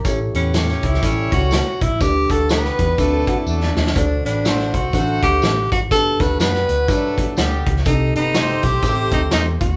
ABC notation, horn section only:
X:1
M:4/4
L:1/16
Q:"Swing" 1/4=123
K:G
V:1 name="Horn section"
z2 [B,GB]2 [A,^CG^c]4 [G,A,Cc]6 z2 | z2 [A,FA]2 [G,B,DB]4 [F,A,DA]4 [F,A,DA]3 z | z2 [B,GB]2 [A,CFc]4 [A,Fcf]6 z2 | z2 [A,FA]2 [G,B,FB]4 [F,A,DA]4 [D,G,B,G]3 z |
z2 [B,GB]2 [A,CGc]4 [A,CGc]6 z2 |]